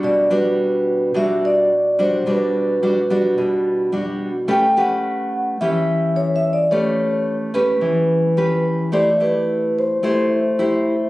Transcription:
<<
  \new Staff \with { instrumentName = "Vibraphone" } { \time 4/4 \key c \lydian \tempo 4 = 108 d''8 b'4. e''8 d''4 c''8 | b'2 r2 | g''8 fis''4 r8 e''4 \tuplet 3/2 { cis''8 e''8 d''8 } | cis''4 r8 b'2 r8 |
d''8 b'4 c''2~ c''8 | }
  \new Staff \with { instrumentName = "Nylon-string guitar" } { \time 4/4 \key c \lydian << { <g d' fis'>8 <g d' fis'>4. <g d' fis'>4 r8 <g d' fis'>8 | <g d' fis'>4 <g d' fis'>8 <g d' fis'>4. <g d' fis'>8 r8 | <cis' g' b'>8 <cis' g' b'>4. <cis' g' b'>2 | <cis' g' b'>4. <cis' g' b'>4. <cis' g' b'>4 |
<e' g' c''>8 <e' g'>4. <e' g' c''>8 r8 <e' g' c''>8 r8 | } \\ { b,2 b,2 | b,2 b,2 | a2 e2 | a2 e2 |
a2 a2 | } >> }
>>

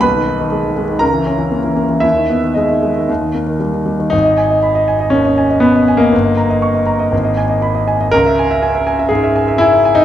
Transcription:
\new Staff \with { instrumentName = "Grand piano" } { \time 4/4 \key gis \minor \tempo 4 = 120 << { b,,16 dis16 dis'16 dis16 gis16 dis16 gis16 dis16 cis,16 e16 cis'16 e16 ais16 e16 ais16 e16 | dis,16 dis16 b16 dis16 gis16 dis16 gis16 dis16 dis,16 dis16 ais16 dis16 g16 dis16 g16 dis16 | gis,,16 dis''16 gis''16 dis''16 b''16 dis''16 gis''16 dis''16 dis,16 dis''16 gis''16 dis''16 b''16 dis''16 gis''16 dis''16 | g,,16 dis''16 ais''16 dis''16 cis'''16 dis''16 ais''16 dis''16 gis,,16 dis''16 gis''16 dis''16 b''16 dis''16 gis''16 dis''16 |
cis,16 e''16 gis''16 e''16 gis''16 e''16 gis''16 e''16 gis,16 e''16 gis''16 e''16 gis''16 e''16 gis''16 e''16 | } \\ { <b' b''>2 <ais' ais''>2 | <e' e''>4 <dis' dis''>2 r4 | dis'2 cis'4 b8. ais16~ | ais1 |
ais'2 gis'4 e'8. dis'16 | } >> }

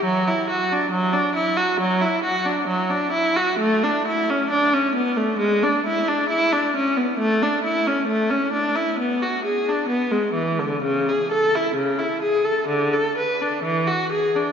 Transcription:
\new Staff \with { instrumentName = "Viola" } { \time 4/4 \key d \major \tempo 4 = 66 fis16 e'16 fis'16 d'16 fis16 d'16 e'16 fis'16 fis16 e'16 fis'16 d'16 fis16 d'16 e'16 fis'16 | \key a \major a16 d'16 e'16 cis'16 d'16 cis'16 b16 a16 gis16 d'16 e'16 d'16 e'16 d'16 cis'16 b16 | a16 d'16 e'16 cis'16 a16 cis'16 d'16 e'16 b16 fis'16 gis'16 d'16 b16 gis16 e16 d16 | cis16 gis'16 a'16 e'16 cis16 e'16 gis'16 a'16 d16 a'16 b'16 d'16 e16 fis'16 gis'16 d'16 | }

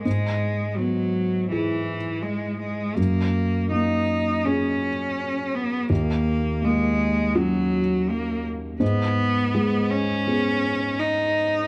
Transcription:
<<
  \new Staff \with { instrumentName = "Felt piano" } { \time 4/4 \key gis \minor \tempo 4 = 82 gis,4 b4 <e' gis'>2 | fis,4 ais4 <cis' gis'>2 | dis,4 ais4 <cis' fis'>2 | gis,4 gis4 <b gis'>2 | }
  \new Staff \with { instrumentName = "Cello" } { \time 4/4 \key gis \minor gis4 fis4 e4 gis8 gis8 | ais4 dis'4 cis'4. b8 | ais4 gis4 fis4 ais8 r8 | b4. cis'4. dis'4 | }
>>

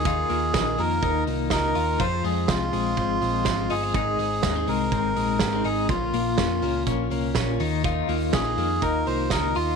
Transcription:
<<
  \new Staff \with { instrumentName = "Melodica" } { \time 4/4 \key ees \mixolydian \tempo 4 = 123 aes'4. bes'4 r8 bes'4 | c''8 aes'8 f'2~ f'8 aes'8~ | aes'4. bes'2 aes'8 | f'2 r2 |
r4 aes'4 bes'8 c''8 bes'8 f'8 | }
  \new Staff \with { instrumentName = "Clean electric guitar" } { \time 4/4 \key ees \mixolydian <ees f'>8 bes8 ees'8 bes8 ees'8 bes8 ees'8 f'8 | <f f'>8 aes8 c'8 aes8 c'8 aes8 c'8 ees'16 f'16 | <aes, ees'>8 aes8 bes16 c'16 aes8 c'8 aes8 bes16 c'16 ees'8 | <bes, f'>8 bes8 des'8 bes8 des'8 bes8 des'8 ees8 |
<ees f'>8 bes8 des'16 ees'16 bes8 ees'8 bes8 ees'8 f'8 | }
  \new Staff \with { instrumentName = "Twelve-string acoustic guitar" } { \time 4/4 \key ees \mixolydian <ees bes ees' f'>8 <bes ees' f'>8 <ees bes ees' f'>8 <bes ees' f'>8 <ees bes ees' f'>8 <bes ees' f'>8 <ees bes ees' f'>8 <bes ees' f'>8 | <f aes c' f'>8 <aes c' f'>8 <f aes c' f'>8 <aes c' f'>8 <f aes c' f'>8 <aes c' f'>8 <f aes c' f'>8 <aes c' f'>8 | <aes, ees aes c' ees'>8 <aes c'>8 <aes, ees aes c' ees'>8 <aes c' ees'>8 <ees aes c' ees'>8 <aes c' ees'>8 <aes, ees aes c' ees'>8 <aes c' ees'>8 | <bes, f bes des' f'>8 <bes des' f'>8 <bes, f bes des' f'>8 <bes des' f'>8 <f bes des' f'>8 <bes des' f'>8 <bes, f bes des' f'>8 <bes ees' f'>8 |
<ees bes ees' f'>8 <bes ees' f'>8 <ees bes ees' f'>8 <bes ees' f'>8 <ees bes ees' f'>8 <bes ees' f'>8 <ees bes ees' f'>8 <bes ees' f'>8 | }
  \new Staff \with { instrumentName = "Picked electric bass" } { \clef bass \time 4/4 \key ees \mixolydian ees,8 ees,8 bes,,8 f,8 ees,8 c,8 des,8 ees,8 | f,8 f,8 c,8 bes,,8 aes,,8 bes,,8 aes,,8 g,,8 | aes,,8 aes,,8 ees,8 c,8 aes,,8 bes,,8 aes,,8 aes,,8 | bes,,8 bes,,8 f,8 des,8 bes,,8 c,8 bes,,8 ees,8~ |
ees,8 ees,8 bes,,8 f,8 ees,8 c,8 des,8 ees,8 | }
  \new DrumStaff \with { instrumentName = "Drums" } \drummode { \time 4/4 <hh bd>8 hho8 <hh bd sn>8 hho8 <hh bd>8 hho8 <hh bd sn>8 hho8 | <hh bd>8 hho8 <hh bd sn>8 hho8 <hh bd>8 hho8 <hh bd sn>8 hho8 | <hh bd>8 hho8 <hh bd sn>8 hho8 <hh bd>8 hho8 <hh bd sn>8 hho8 | <hh bd>8 hho8 <hh bd sn>8 hho8 <hh bd>8 hho8 <hh bd sn>8 hho8 |
<hh bd>8 hho8 <hh bd sn>8 hho8 <hh bd>8 hho8 <hh bd sn>8 hho8 | }
>>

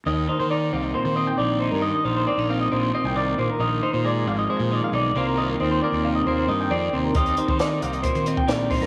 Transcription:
<<
  \new Staff \with { instrumentName = "Clean electric guitar" } { \time 4/4 \key ees \major \tempo 4 = 135 ees''8 c''16 c''16 d''8 f''16 ees''16 c''8 ees''16 g''16 d''8 c''16 bes'16 | ees''8 c''16 c''16 d''8 f''16 ees''16 c''8 ees''16 g''16 d''8 c''16 bes'16 | ees''8 c''16 c''16 d''8 f''16 ees''16 c''8 d''16 f''16 d''8 c''16 bes'16 | ees''8 c''16 c''16 d''8 f''16 ees''16 c''8 ees''16 g''16 d''8 c''16 bes'16 |
ees''8 c''16 c''16 d''8 f''16 ees''16 c''8 ees''16 g''16 d''8 c''16 bes'16 | }
  \new Staff \with { instrumentName = "Clean electric guitar" } { \clef bass \time 4/4 \key ees \major << { r4 ees'8 c'4 c'4 ees'8 | r4 c'16 ees'16 c'4 c'4 r8 | r8 ees'8 aes4 aes4 ees'8 <ees bes c' f'>8~ | <ees bes c' f'>8 c'8 bes4 bes4 c'4 |
<ees c' ees' g'>4 ees'8 c'4 c'4 ees'8 | } \\ { ees,8 ees4. bes,4 ees4 | ees,8 ees4. bes,4 ees8 bes,8 | ees4. f,4 ees4 c8 | ees4. c4 ees4 c8 |
ees,8 ees4. bes,4 ees4 | } >> }
  \new Staff \with { instrumentName = "Fingered electric bass" } { \clef bass \time 4/4 \key ees \major ees,8 r16 ees8. c,8 r16 ees8 r16 bes,,8. g,16~ | g,16 r16 bes,,8 r16 bes,,8. bes,,8 r16 c,8. bes,,16 r16 | bes,,8 r16 bes,8. aes,,8 r16 bes,8 r16 ces,8 c,8~ | c,8 ees,8 r16 ees,8. ees,8 g,8 f,8 ees,8 |
ees,8 r16 ees8. c,8 r16 ees8 r16 bes,,8. g,16 | }
  \new DrumStaff \with { instrumentName = "Drums" } \drummode { \time 4/4 r4 r4 r4 r4 | r4 r4 r4 r4 | r4 r4 r4 r4 | r4 r4 r4 r4 |
<hh bd>16 hh16 hh16 bd16 <hh sn>8 hh16 hh16 <hh bd>16 hh16 hh16 bd16 <hh sn>8 <hho bd>16 <hh sn>16 | }
>>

